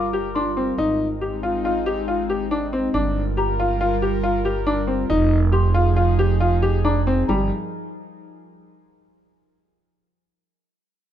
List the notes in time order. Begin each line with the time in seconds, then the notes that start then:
Already playing: G1 G3 F4 A#4 C6 D6
0.13 G4
0.35 D4 C6
0.57 C4
0.78 G#1 G#3 C4 D#4
1.21 G4
1.43 F4
1.65 F4
1.86 G4
2.08 F4
2.30 G4
2.51 D4
2.73 C4
2.94 G1 G3 D4 F4 A#4
3.37 G4 A#5
3.60 F4
3.81 F4
4.02 G4
4.23 F4
4.45 G4
4.67 D4
4.87 C4
5.10 F1 F3 D#4 G#4
5.52 G4 C6
5.74 F4
5.96 F4
6.19 G4
6.40 F4
6.62 G4
6.85 D4 A#5
7.07 C4
7.28 G1 G3 A#5